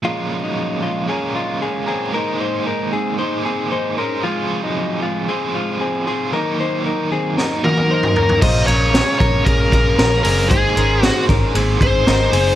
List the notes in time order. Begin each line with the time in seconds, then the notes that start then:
0.02 A#2 F3 G#3 C#4 F4
0.07 F4 A#4
0.44 F#3 D#4
0.83 G#3 F4
1.08 G#3 C#4 F4 G#4 A#4
1.35 G#3 F4
1.62 C#4 G#4
1.86 G#3 C4 C#4 F4 G#4 A#4
2.12 G#3 A#3 D#4 G#4 A#4
2.17 C5
2.40 D#4 C5
2.66 D#4 A#4
2.93 C4 G#4
3.18 A#3 D#4 G#4 C5
3.45 C4 G#4
3.72 D#4 C5
3.98 C#4 D#4 G#4 A#4 C5
4.22 F3 G#3 C4 F4
4.26 G#4 C5
4.63 F#3 D#4
5.03 G#3 F4
5.29 C4 F4 G#4 C5
5.55 G#3 F4
5.81 C4 G#4
6.07 C4 F4 G#4 C5
6.32 D#3 F#3 A#3 D#4 A#4
6.36 D#4 A#4
6.60 D#4 C5
6.86 D#4 A#4
7.12 C4 G#4
7.37 F#3 A#3 D#4 A#4, snare
7.64 A#3 F#4 A#4, high tom
7.77 high tom
7.91 D#4 C5
8.03 mid tom
8.16 A#3 C#4 D#4 A#4, floor tom
8.29 floor tom
8.42 A#1 A#2 F3 G#3 C#4 F4 A#4 C5 D#5, kick, crash
8.67 A#1 G#3 C#4 F4 A#4 C#5, ride
8.93 G#3 C#4 F4 G#4 A#4, snare, ride
9.19 A#1 C#4 F4 A#4 C#5, kick, ride
9.23 G#3
9.45 A#1 A#2 F3 G#3 C#4 F4 G#4 A#4, kick, ride
9.71 A#1 G#3 C#4 F4 A#4, kick, ride
9.97 A#1 G#3 C#4 F4 A#4, snare, ride
10.23 F#1 G#3 C4 C#4 F4 G#4 A#4, open hi-hat, ride
10.50 G#1 G#3 A#3 D#4 G#4 C5, kick, hi-hat pedal, ride
10.75 G#1 C#4 D#4 G#4 A#4 C5, ride
11.02 A#3 C4 D#4 F#4 G#4 C5, snare, ride
11.27 G#1 C#4 D#4 G#4 A#4 C5, kick, snare, ride
11.55 G#1 G#3 A#3 C4 D#4 G#4 C5, ride
11.80 G#1 D#4 G#4 C5, kick, ride
12.06 G#1 A#3 D#4 G#4 A#4 C5, snare, ride
12.32 F#1 C4 D#4 G#4 C5, open hi-hat, ride